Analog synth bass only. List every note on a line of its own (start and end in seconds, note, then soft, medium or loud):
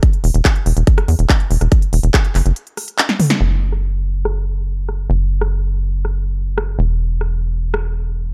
0.24 0.31 E1 medium
0.34 0.41 E1 medium
0.66 0.73 E1 medium
0.77 0.83 E1 medium
1.08 1.15 E2 medium
1.19 1.26 E1 medium
1.51 1.57 E1 medium
1.61 1.68 E1 medium
1.93 2.00 E1 loud
2.03 2.10 E1 medium
2.35 2.42 F#1 loud
2.46 2.52 F#1 medium
3.41 5.08 F#1 medium
5.10 6.77 F#1 medium
6.79 8.34 E1 medium